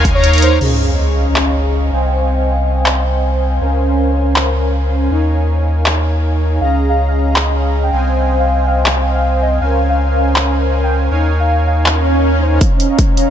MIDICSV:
0, 0, Header, 1, 7, 480
1, 0, Start_track
1, 0, Tempo, 375000
1, 782, Time_signature, 4, 2, 24, 8
1, 17025, End_track
2, 0, Start_track
2, 0, Title_t, "Soft synth lead"
2, 0, Program_c, 0, 80
2, 185, Note_on_c, 0, 73, 96
2, 461, Note_off_c, 0, 73, 0
2, 541, Note_on_c, 0, 72, 94
2, 728, Note_off_c, 0, 72, 0
2, 8459, Note_on_c, 0, 77, 95
2, 8738, Note_off_c, 0, 77, 0
2, 8824, Note_on_c, 0, 77, 87
2, 9007, Note_off_c, 0, 77, 0
2, 9062, Note_on_c, 0, 77, 92
2, 9429, Note_off_c, 0, 77, 0
2, 10026, Note_on_c, 0, 79, 83
2, 10208, Note_off_c, 0, 79, 0
2, 10744, Note_on_c, 0, 77, 96
2, 11020, Note_off_c, 0, 77, 0
2, 11099, Note_on_c, 0, 77, 87
2, 11287, Note_off_c, 0, 77, 0
2, 11706, Note_on_c, 0, 77, 90
2, 11981, Note_off_c, 0, 77, 0
2, 12061, Note_on_c, 0, 75, 90
2, 12248, Note_off_c, 0, 75, 0
2, 12302, Note_on_c, 0, 77, 100
2, 12580, Note_off_c, 0, 77, 0
2, 12666, Note_on_c, 0, 77, 89
2, 12848, Note_off_c, 0, 77, 0
2, 12905, Note_on_c, 0, 77, 93
2, 13270, Note_off_c, 0, 77, 0
2, 13869, Note_on_c, 0, 79, 88
2, 14050, Note_off_c, 0, 79, 0
2, 14589, Note_on_c, 0, 77, 95
2, 14863, Note_off_c, 0, 77, 0
2, 14941, Note_on_c, 0, 77, 91
2, 15128, Note_off_c, 0, 77, 0
2, 15546, Note_on_c, 0, 73, 93
2, 15821, Note_off_c, 0, 73, 0
2, 15903, Note_on_c, 0, 72, 85
2, 16089, Note_off_c, 0, 72, 0
2, 17025, End_track
3, 0, Start_track
3, 0, Title_t, "Supersaw synth"
3, 0, Program_c, 1, 81
3, 0, Note_on_c, 1, 63, 79
3, 0, Note_on_c, 1, 70, 72
3, 0, Note_on_c, 1, 73, 73
3, 0, Note_on_c, 1, 77, 75
3, 0, Note_on_c, 1, 80, 86
3, 161, Note_off_c, 1, 63, 0
3, 161, Note_off_c, 1, 70, 0
3, 161, Note_off_c, 1, 73, 0
3, 161, Note_off_c, 1, 77, 0
3, 161, Note_off_c, 1, 80, 0
3, 186, Note_on_c, 1, 63, 89
3, 186, Note_on_c, 1, 82, 99
3, 187, Note_on_c, 1, 70, 85
3, 187, Note_on_c, 1, 73, 81
3, 187, Note_on_c, 1, 77, 83
3, 396, Note_off_c, 1, 82, 0
3, 397, Note_off_c, 1, 63, 0
3, 397, Note_off_c, 1, 70, 0
3, 397, Note_off_c, 1, 73, 0
3, 397, Note_off_c, 1, 77, 0
3, 425, Note_on_c, 1, 63, 82
3, 425, Note_on_c, 1, 82, 87
3, 426, Note_on_c, 1, 70, 74
3, 426, Note_on_c, 1, 73, 74
3, 426, Note_on_c, 1, 77, 71
3, 754, Note_off_c, 1, 63, 0
3, 754, Note_off_c, 1, 70, 0
3, 754, Note_off_c, 1, 73, 0
3, 754, Note_off_c, 1, 77, 0
3, 754, Note_off_c, 1, 82, 0
3, 782, Note_on_c, 1, 61, 76
3, 782, Note_on_c, 1, 68, 65
3, 782, Note_on_c, 1, 75, 67
3, 782, Note_on_c, 1, 77, 66
3, 782, Note_on_c, 1, 82, 82
3, 2434, Note_off_c, 1, 61, 0
3, 2434, Note_off_c, 1, 68, 0
3, 2434, Note_off_c, 1, 75, 0
3, 2434, Note_off_c, 1, 77, 0
3, 2434, Note_off_c, 1, 82, 0
3, 2461, Note_on_c, 1, 60, 79
3, 2461, Note_on_c, 1, 72, 72
3, 2461, Note_on_c, 1, 75, 71
3, 2461, Note_on_c, 1, 77, 68
3, 2461, Note_on_c, 1, 79, 69
3, 2461, Note_on_c, 1, 80, 87
3, 4594, Note_off_c, 1, 60, 0
3, 4594, Note_off_c, 1, 72, 0
3, 4594, Note_off_c, 1, 75, 0
3, 4594, Note_off_c, 1, 77, 0
3, 4594, Note_off_c, 1, 79, 0
3, 4594, Note_off_c, 1, 80, 0
3, 4621, Note_on_c, 1, 61, 73
3, 4621, Note_on_c, 1, 70, 64
3, 4621, Note_on_c, 1, 80, 80
3, 4622, Note_on_c, 1, 72, 70
3, 4622, Note_on_c, 1, 77, 70
3, 6514, Note_off_c, 1, 61, 0
3, 6514, Note_off_c, 1, 70, 0
3, 6514, Note_off_c, 1, 72, 0
3, 6514, Note_off_c, 1, 77, 0
3, 6514, Note_off_c, 1, 80, 0
3, 6540, Note_on_c, 1, 77, 65
3, 6541, Note_on_c, 1, 63, 74
3, 6541, Note_on_c, 1, 70, 69
3, 6541, Note_on_c, 1, 73, 64
3, 6541, Note_on_c, 1, 80, 80
3, 8433, Note_off_c, 1, 77, 0
3, 8434, Note_off_c, 1, 63, 0
3, 8434, Note_off_c, 1, 70, 0
3, 8434, Note_off_c, 1, 73, 0
3, 8434, Note_off_c, 1, 80, 0
3, 8461, Note_on_c, 1, 61, 73
3, 8461, Note_on_c, 1, 68, 66
3, 8461, Note_on_c, 1, 75, 68
3, 8461, Note_on_c, 1, 77, 65
3, 8461, Note_on_c, 1, 82, 82
3, 10114, Note_off_c, 1, 61, 0
3, 10114, Note_off_c, 1, 68, 0
3, 10114, Note_off_c, 1, 75, 0
3, 10114, Note_off_c, 1, 77, 0
3, 10114, Note_off_c, 1, 82, 0
3, 10141, Note_on_c, 1, 60, 78
3, 10141, Note_on_c, 1, 72, 72
3, 10141, Note_on_c, 1, 79, 72
3, 10141, Note_on_c, 1, 80, 86
3, 10142, Note_on_c, 1, 75, 73
3, 10142, Note_on_c, 1, 77, 71
3, 12274, Note_off_c, 1, 60, 0
3, 12274, Note_off_c, 1, 72, 0
3, 12274, Note_off_c, 1, 75, 0
3, 12274, Note_off_c, 1, 77, 0
3, 12274, Note_off_c, 1, 79, 0
3, 12274, Note_off_c, 1, 80, 0
3, 12301, Note_on_c, 1, 61, 75
3, 12301, Note_on_c, 1, 72, 64
3, 12301, Note_on_c, 1, 77, 67
3, 12301, Note_on_c, 1, 80, 85
3, 12302, Note_on_c, 1, 70, 69
3, 14194, Note_off_c, 1, 61, 0
3, 14194, Note_off_c, 1, 70, 0
3, 14194, Note_off_c, 1, 72, 0
3, 14194, Note_off_c, 1, 77, 0
3, 14194, Note_off_c, 1, 80, 0
3, 14220, Note_on_c, 1, 63, 74
3, 14220, Note_on_c, 1, 70, 66
3, 14220, Note_on_c, 1, 73, 68
3, 14220, Note_on_c, 1, 77, 66
3, 14221, Note_on_c, 1, 80, 83
3, 16113, Note_off_c, 1, 63, 0
3, 16113, Note_off_c, 1, 70, 0
3, 16113, Note_off_c, 1, 73, 0
3, 16113, Note_off_c, 1, 77, 0
3, 16114, Note_off_c, 1, 80, 0
3, 16141, Note_on_c, 1, 61, 77
3, 16141, Note_on_c, 1, 73, 68
3, 16141, Note_on_c, 1, 75, 68
3, 16141, Note_on_c, 1, 77, 67
3, 16476, Note_off_c, 1, 61, 0
3, 16476, Note_off_c, 1, 73, 0
3, 16476, Note_off_c, 1, 75, 0
3, 16476, Note_off_c, 1, 77, 0
3, 16506, Note_on_c, 1, 61, 90
3, 16506, Note_on_c, 1, 75, 81
3, 16506, Note_on_c, 1, 82, 100
3, 16507, Note_on_c, 1, 73, 82
3, 16507, Note_on_c, 1, 77, 83
3, 16834, Note_off_c, 1, 61, 0
3, 16834, Note_off_c, 1, 75, 0
3, 16834, Note_off_c, 1, 77, 0
3, 16834, Note_off_c, 1, 82, 0
3, 16835, Note_off_c, 1, 73, 0
3, 16861, Note_on_c, 1, 61, 94
3, 16861, Note_on_c, 1, 73, 86
3, 16861, Note_on_c, 1, 75, 85
3, 16861, Note_on_c, 1, 77, 89
3, 16861, Note_on_c, 1, 82, 99
3, 17025, Note_off_c, 1, 61, 0
3, 17025, Note_off_c, 1, 73, 0
3, 17025, Note_off_c, 1, 75, 0
3, 17025, Note_off_c, 1, 77, 0
3, 17025, Note_off_c, 1, 82, 0
3, 17025, End_track
4, 0, Start_track
4, 0, Title_t, "Sub bass"
4, 0, Program_c, 2, 38
4, 0, Note_on_c, 2, 39, 90
4, 759, Note_off_c, 2, 39, 0
4, 781, Note_on_c, 2, 37, 85
4, 2438, Note_off_c, 2, 37, 0
4, 2463, Note_on_c, 2, 36, 88
4, 4599, Note_off_c, 2, 36, 0
4, 4623, Note_on_c, 2, 37, 83
4, 6519, Note_off_c, 2, 37, 0
4, 6541, Note_on_c, 2, 39, 86
4, 8439, Note_off_c, 2, 39, 0
4, 8461, Note_on_c, 2, 37, 85
4, 10118, Note_off_c, 2, 37, 0
4, 10142, Note_on_c, 2, 36, 87
4, 12279, Note_off_c, 2, 36, 0
4, 12301, Note_on_c, 2, 37, 82
4, 14199, Note_off_c, 2, 37, 0
4, 14222, Note_on_c, 2, 39, 87
4, 16119, Note_off_c, 2, 39, 0
4, 17025, End_track
5, 0, Start_track
5, 0, Title_t, "Sub drop"
5, 0, Program_c, 3, 103
5, 782, Note_on_c, 3, 60, 67
5, 2702, Note_off_c, 3, 60, 0
5, 17025, End_track
6, 0, Start_track
6, 0, Title_t, "Swell"
6, 0, Program_c, 4, 103
6, 15182, Note_on_c, 4, 60, 71
6, 16142, Note_off_c, 4, 60, 0
6, 17025, End_track
7, 0, Start_track
7, 0, Title_t, "Drums"
7, 62, Note_on_c, 9, 36, 58
7, 63, Note_on_c, 9, 42, 66
7, 190, Note_off_c, 9, 36, 0
7, 191, Note_off_c, 9, 42, 0
7, 303, Note_on_c, 9, 42, 82
7, 427, Note_off_c, 9, 42, 0
7, 427, Note_on_c, 9, 42, 54
7, 485, Note_off_c, 9, 42, 0
7, 485, Note_on_c, 9, 42, 69
7, 542, Note_off_c, 9, 42, 0
7, 542, Note_on_c, 9, 42, 78
7, 670, Note_off_c, 9, 42, 0
7, 782, Note_on_c, 9, 49, 79
7, 910, Note_off_c, 9, 49, 0
7, 1742, Note_on_c, 9, 39, 94
7, 1870, Note_off_c, 9, 39, 0
7, 3661, Note_on_c, 9, 39, 94
7, 3789, Note_off_c, 9, 39, 0
7, 5582, Note_on_c, 9, 39, 95
7, 5710, Note_off_c, 9, 39, 0
7, 7501, Note_on_c, 9, 39, 93
7, 7629, Note_off_c, 9, 39, 0
7, 9421, Note_on_c, 9, 39, 94
7, 9549, Note_off_c, 9, 39, 0
7, 11341, Note_on_c, 9, 39, 94
7, 11469, Note_off_c, 9, 39, 0
7, 13261, Note_on_c, 9, 39, 91
7, 13389, Note_off_c, 9, 39, 0
7, 15182, Note_on_c, 9, 39, 97
7, 15310, Note_off_c, 9, 39, 0
7, 16141, Note_on_c, 9, 42, 75
7, 16142, Note_on_c, 9, 36, 96
7, 16269, Note_off_c, 9, 42, 0
7, 16270, Note_off_c, 9, 36, 0
7, 16382, Note_on_c, 9, 42, 63
7, 16510, Note_off_c, 9, 42, 0
7, 16621, Note_on_c, 9, 42, 78
7, 16622, Note_on_c, 9, 36, 96
7, 16749, Note_off_c, 9, 42, 0
7, 16750, Note_off_c, 9, 36, 0
7, 16862, Note_on_c, 9, 42, 67
7, 16990, Note_off_c, 9, 42, 0
7, 17025, End_track
0, 0, End_of_file